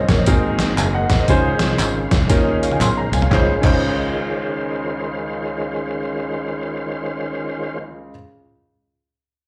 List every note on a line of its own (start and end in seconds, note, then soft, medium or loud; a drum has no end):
0.00 3.27 D#3 medium
0.00 0.24 F#3 medium
0.00 0.26 G#3 medium
0.00 0.24 C#4 medium
0.00 1.24 A#4 medium
0.09 0.24 A#1 medium
0.09 0.18 A#4 medium
0.09 0.18 C#5 medium
0.09 kick medium
0.09 snare loud
0.09 closed hi-hat medium
0.09 tambourine medium
0.18 0.43 C5 medium
0.18 0.42 D#5 medium
0.26 0.71 G#1 loud
0.26 1.06 G#2 medium
0.26 3.28 G#3 medium
0.26 1.27 A#3 medium
0.26 0.88 C4 medium
0.26 0.88 D#4 medium
0.26 0.88 F#4 medium
0.26 0.88 G#4 medium
0.26 0.88 A#4 loud
0.26 3.28 C5 medium
0.26 kick loud
0.26 closed hi-hat loud
0.26 tambourine medium
0.59 snare loud
0.59 closed hi-hat medium
0.59 tambourine medium
0.78 1.05 F#1 medium
0.78 0.94 F5 medium
0.78 0.93 G#5 medium
0.78 clap loud
0.78 closed hi-hat medium
0.78 tambourine loud
0.95 1.18 D#5 medium
0.95 1.18 F#5 medium
1.10 1.26 A#1 medium
1.10 kick medium
1.10 snare loud
1.10 closed hi-hat medium
1.10 tambourine medium
1.20 1.29 C5 medium
1.20 1.44 D#5 medium
1.28 1.56 C#2 loud
1.28 2.08 C#3 medium
1.28 3.29 C#4 medium
1.28 1.90 C#4 medium
1.28 1.90 D#4 medium
1.28 3.29 F4 medium
1.28 1.90 F4 medium
1.28 1.90 G#4 medium
1.28 1.90 C5 loud
1.28 kick loud
1.28 closed hi-hat loud
1.28 tambourine medium
1.59 1.76 C2 medium
1.59 snare loud
1.59 closed hi-hat medium
1.59 tambourine medium
1.79 2.07 G#1 loud
1.79 clap loud
1.79 closed hi-hat medium
1.79 tambourine loud
2.11 2.27 C2 medium
2.11 kick medium
2.11 snare loud
2.11 closed hi-hat medium
2.11 tambourine medium
2.29 2.73 D#2 loud
2.29 2.91 C#4 loud
2.29 2.91 D#4 medium
2.29 2.91 F4 medium
2.29 2.91 G#4 medium
2.29 2.91 A#4 medium
2.29 kick loud
2.29 snare medium
2.29 closed hi-hat loud
2.29 tambourine medium
2.63 2.71 C#5 medium
2.63 2.71 F5 medium
2.63 closed hi-hat medium
2.63 tambourine medium
2.72 2.81 F5 medium
2.72 2.80 G#5 medium
2.72 high tom medium
2.80 3.07 B1 loud
2.80 2.96 G#5 medium
2.80 2.96 C6 medium
2.80 clap loud
2.80 closed hi-hat medium
2.80 mid tom medium
2.80 tambourine loud
2.97 3.12 A#5 medium
3.12 3.28 C2 medium
3.12 3.21 F5 medium
3.12 3.22 G#5 medium
3.12 closed hi-hat medium
3.12 floor tom loud
3.12 tambourine medium
3.22 3.47 C#5 medium
3.22 3.47 F5 medium
3.22 floor tom loud
3.30 3.49 C#2 loud
3.30 3.49 C#2 medium
3.30 7.78 D#3 medium
3.30 7.78 G#3 medium
3.30 3.49 C#4 medium
3.30 7.78 C#4 medium
3.30 3.49 D#4 medium
3.30 7.78 F4 medium
3.30 3.50 F4 medium
3.30 7.79 C5 medium
3.30 3.51 C5 medium
3.30 kick loud
3.30 snare medium
3.30 clap medium
3.61 8.11 C#2 loud
3.61 8.11 C#2 medium
3.61 8.09 C#4 medium
3.61 8.11 D#4 medium
3.61 8.12 F4 medium
3.61 8.13 C5 loud
3.61 kick loud
3.61 clap medium
3.61 crash medium